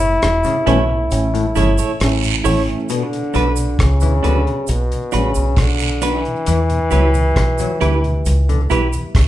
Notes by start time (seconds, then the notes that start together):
Already playing: F#1 E4
0.01 A2, closed hi-hat
0.22 E1, cross-stick, closed hi-hat
0.44 A2 C#3, closed hi-hat, cabasa
0.66 B1 B2 E3 A3 C#4 E4 A4 C#5, closed hi-hat
0.90 A2, muted clean electric guitar stroke
1.10 A1 E3 A3 C#4, closed hi-hat, cabasa
1.34 A2, closed hi-hat
1.55 G1 C#3 E3 A3 C#4 E4 A4 C#5, closed hi-hat, cabasa
1.78 A2 E4 A4 C#5, closed hi-hat, cabasa
2.00 A1 E3 A3 C#4, cross-stick, closed hi-hat, long guiro
2.23 A2, closed hi-hat, cabasa
2.44 A1 E3 A3 C#4 E4 A4 C#5, open hi-hat, cabasa
2.69 A2, closed hi-hat
2.89 B2 D3, closed hi-hat, cabasa
3.13 B2, closed hi-hat
3.34 B1 D3 F#3 B3 D4 F#4 B4, closed hi-hat, cabasa
3.56 B2, closed hi-hat, cabasa
3.79 C#2 C#3, kick, cross-stick, closed hi-hat
4.01 D2 B2 E3, closed hi-hat, cabasa
4.23 D2 D3 F#3 B3 D4 F#4 B4, closed hi-hat
4.47 B2, closed hi-hat
4.67 B1 B2, closed hi-hat, cabasa
4.92 B2, closed hi-hat
5.12 A1 C#3 F#3 B3 D4 F#4 B4, closed hi-hat, cabasa
5.35 B1 B2, closed hi-hat, cabasa
5.57 B1 D3, kick, cross-stick, closed hi-hat, long guiro
5.79 B2, closed hi-hat, cabasa
6.01 E3 F#3 B3 D4 F#4 B4, closed hi-hat, cabasa
6.25 B2, closed hi-hat
6.46 E2 E3, closed hi-hat, cabasa
6.70 E2 B2, closed hi-hat
6.91 C#2 F#3 G3 B3 E4 G4 B4, closed hi-hat, cabasa
7.14 E2 B2, closed hi-hat, cabasa
7.36 B1, kick, cross-stick, closed hi-hat
7.58 E2 B2 F#3, closed hi-hat, cabasa
7.81 D2 E3 G3 B3 E4 G4 B4, closed hi-hat
8.04 E2 B2, closed hi-hat
8.26 C#2, closed hi-hat, cabasa
8.49 E2 B2 D3, closed hi-hat
8.70 B1 E3 G3 B3 E4 G4 B4, closed hi-hat, cabasa
8.93 E2 B2, closed hi-hat, cabasa
9.15 C#2, kick, cross-stick, closed hi-hat, long guiro